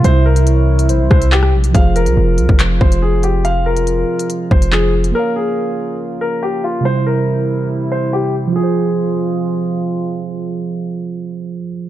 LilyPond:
<<
  \new Staff \with { instrumentName = "Soft synth lead" } { \time 4/4 \key f \minor \tempo 4 = 141 r4 des''4 c''8 e''8 r4 | r1 | r1 | r1 |
r1 | r1 | r1 | }
  \new Staff \with { instrumentName = "Grand piano" } { \time 4/4 \key f \minor c''8 bes'4. r8 c''8 g'8 r8 | f''8 bes'4. r8 c''8 aes'8 g'8 | f''8 bes'4. r8 c''8 aes'8 r8 | bes'8 aes'4. r8 bes'8 g'8 f'8 |
c''8 bes'4. r8 c''8 g'8 r8 | aes'2. r4 | r1 | }
  \new Staff \with { instrumentName = "Tine electric piano" } { \time 4/4 \key f \minor <c g e' e''>1 | <f f' aes' c''>1~ | <f f' aes' c''>2. <f f' aes' c''>4 | <bes bes' des'' f''>1 |
<c g e' c''>1 | <f f' aes' c''>1~ | <f f' aes' c''>1 | }
  \new Staff \with { instrumentName = "Brass ensemble" } { \clef bass \time 4/4 \key f \minor << { <c g e'>1 | <c aes f'>1~ | <c aes f'>1 | <des bes f'>1 |
<c g e'>1 | <c f aes f'>1~ | <c f aes f'>1 | } \\ { e1 | f1~ | f1~ | f1 |
e1 | r1 | r1 | } >> }
  \new Staff \with { instrumentName = "808-style bass" } { \clef bass \time 4/4 \key f \minor c,2 bes,,16 c,16 c,4 bes,,16 c,16 | f,,8. c,16 f,,8 c,16 f,,8. f,,4.~ | f,,4. r4 f,,4. | r1 |
r1 | r1 | r1 | }
  \new DrumStaff \with { instrumentName = "Drums" } \drummode { \time 4/4 hh8. hh16 hh8. hh16 hh8 <bd ss>16 hh16 hc16 ss8 hh16 | <hh bd>8 hh16 hh16 r8 hh16 bd16 <hc hh>8 bd16 hh16 r8 hh8 | hh8. hh16 hh8. hh16 hh8 bd16 hh16 hc8. hh16 | r4 r4 r4 r4 |
r4 r4 r4 r4 | r4 r4 r4 r4 | r4 r4 r4 r4 | }
>>